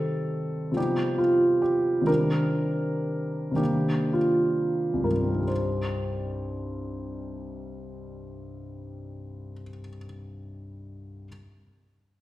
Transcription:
Already playing: C3 D#3 G3 C4 D#4 A4
0.72 C3 F3 G3
0.76 B3 D#4 G4
1.18 F4
1.62 G4
2.02 C3 D#3 G3
2.06 C4 D4 A#4
3.52 C3 D#3 G3
3.56 A#3 D4 G4
4.13 F4
4.93 C2
5.03 G2 A#4
5.12 G3
5.21 C4
5.31 D#4
5.40 G4
5.47 C5

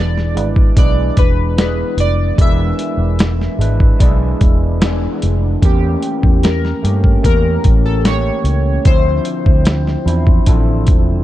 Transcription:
Already playing: E1 E3 G#3 B3 D4 E4 G#4 B4
0.00 D5
0.17 snare
0.35 G#1 G#3 D4 E4 B4, closed hi-hat
0.56 kick
0.75 B1 E3 G#3 B3 D4 E4 G#4 B4 D5, kick, closed hi-hat
1.17 E1 B4, kick, closed hi-hat
1.56 E3 B3 D4 G#4 B4, snare, closed hi-hat
1.97 F1 D5, closed hi-hat
2.35 E1 E3 G#3 B3 D4, kick, closed hi-hat
2.40 D4 E4 G#4 A#4 E5
2.47 B4
2.79 closed hi-hat
2.97 E1
3.19 snare, closed hi-hat
3.41 snare
3.59 G#1 G#3 D4 E4 B4, closed hi-hat
3.80 kick
3.99 B1 E3 G#3 B3 D4 E4 G#4 D5, kick, closed hi-hat
4.41 E1, kick, closed hi-hat
4.80 E3 B3 D4 G#4, snare, closed hi-hat
5.22 F1, closed hi-hat
5.61 E2 E3 A3 A#3 C#4 G4 A#4, kick, closed hi-hat
6.02 closed hi-hat
6.23 E2, kick
6.43 A#4, snare, closed hi-hat
6.65 snare
6.82 G2 A3 A#3 C#4 G4 A4, closed hi-hat
7.04 kick
7.22 E2 E3 A3 A#3 C#4 G4 A#4, kick, closed hi-hat
7.64 A1, kick, closed hi-hat
7.86 A4
8.03 E3 A#3 C#4 G4 C#5, snare, closed hi-hat
8.44 C#2, closed hi-hat
8.85 D2 D3 F3 C4 D4 E4 C5, kick, closed hi-hat
9.25 closed hi-hat
9.46 D2, kick
9.65 snare, closed hi-hat
9.87 snare
10.05 E2 F3 C4 D4 E4 C5, closed hi-hat
10.27 kick
10.46 A1 D3 F3 C4 D4 E4 A4, kick, closed hi-hat
10.87 E1, kick, closed hi-hat

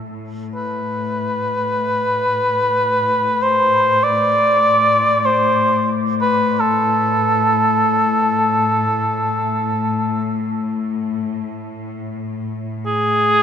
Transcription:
0.08 A2
0.55 B4
3.43 C5
4.03 D5
5.25 C5
6.22 B4
6.60 A4
12.86 G#4

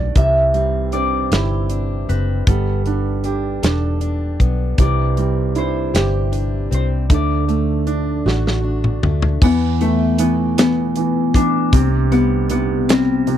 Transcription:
Already playing: B1 D3 A3 F#4 D5 F#5
0.15 C2 C3 E3 E5, kick, closed hi-hat
0.54 G3 C4, closed hi-hat
0.92 C4 D4 D5, closed hi-hat
1.32 G1 E4 G4, snare, closed hi-hat
1.70 D4, closed hi-hat
2.09 F#1 C4 B4, closed hi-hat
2.47 G1 G3 B3 A4, kick, closed hi-hat
2.86 B3 D4, closed hi-hat
3.24 D4 G4, closed hi-hat
3.63 E1 D4 A4, snare, closed hi-hat
4.01 D4, closed hi-hat
4.40 B1 B3, kick, closed hi-hat
4.78 C2 C3 E3 D5, kick, closed hi-hat
5.17 G3 C4, closed hi-hat
5.55 D4 E4 C5, closed hi-hat
5.94 G1 G4, snare, closed hi-hat
6.32 D4, closed hi-hat
6.71 C2 C4 C5, closed hi-hat
7.10 D2 D3 A3, kick, closed hi-hat
7.14 D5
7.48 A3, closed hi-hat
7.87 D4, closed hi-hat
8.26 A1 F#4, snare
8.47 snare
8.64 D4
8.84 mid tom
9.03 D2 A3, mid tom
9.22 floor tom
9.42 E2 E3 B3, kick, crash
9.81 E3 A3, closed hi-hat
10.18 E3 B3, closed hi-hat
10.58 E3 B3, snare, closed hi-hat
10.96 E3, closed hi-hat
11.34 E3 D4, kick, closed hi-hat
11.73 C2 C3 C4, kick, closed hi-hat
12.12 G3 B3, closed hi-hat
12.50 C3 B3, closed hi-hat
12.89 G3 C4, snare, closed hi-hat
13.27 C3, closed hi-hat

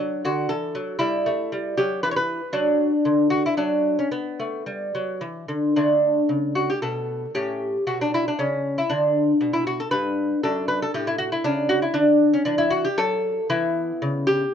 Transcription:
Already playing: D4
0.00 F#3
0.25 D3 F#4
0.49 E3 A4
0.75 F#3
0.99 G3 E4
1.26 A3
1.52 G3
1.77 F#3 G4
2.03 E3 B4
2.11 C#5
2.16 B4
2.53 F#3 D4
3.05 D3
3.30 F#4
3.46 E4
3.57 F#3 D4
3.99 C#4
4.12 B3
4.40 A3
4.66 G3
4.95 F#3
5.21 E3
5.48 D3
5.76 D3 A3 D4
6.29 C#3
6.55 F#4
6.70 G4
6.82 B2 A4
7.35 A2 C#4 G4
7.87 B2 F#4
8.01 D4
8.14 E4
8.28 D4
8.39 C#3 C#4
8.78 E4
8.90 D3 D4
9.41 B2
9.53 E4
9.67 F#4
9.80 A4
9.91 G2 B4
10.43 F#2 D4 A4
10.68 B4
10.82 A4
10.94 A2 G4
11.07 E4
11.18 F#4
11.32 E4
11.44 C#3 D4
11.69 F#4
11.82 E4
11.94 D3 D4
12.34 C#4
12.45 E3 D4
12.58 E4
12.70 F#4
12.85 G4
12.98 F#3 A4
13.50 E3 B3 E4
14.02 C#3
14.27 G4

